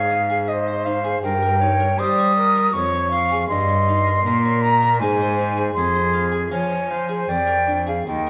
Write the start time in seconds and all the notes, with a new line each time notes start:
Already playing: G#2 G#4 C#5 F5
0.10 D#5
0.30 G#4
0.47 C5 D#5
0.68 C5
0.85 D#4 F5
1.04 G#4
1.23 G2 A#4 G5
1.42 A#4
1.60 D#4 C#5
1.80 A#4
1.99 G3 C5 D#5 D#6
2.18 C#5
2.36 A#4 D#5
2.55 A#4
2.73 F2 C#5 C#6
2.93 C#5
3.11 F4 F5
3.31 G#4
3.48 G2 D#5 C6
3.69 C#5
3.89 D#4
4.07 A#4
4.24 A#2 A#4 D#5
4.46 C#5
4.62 D#5 A#5
4.82 A#4
5.00 G#2 G#3 C5 G#5
5.21 C5
5.39 D#4
5.57 G#4
5.74 F2 G#4 C6
5.95 C5
6.14 F4
6.32 G#4
6.51 F3 C#5 F5 G#5
6.72 D#5
6.91 C5 F5
7.09 G#4
7.28 F2 D5 G5
7.47 A#4
7.67 D4
7.87 G#4 F5
8.07 D#2 D#5 G5
8.27 A#4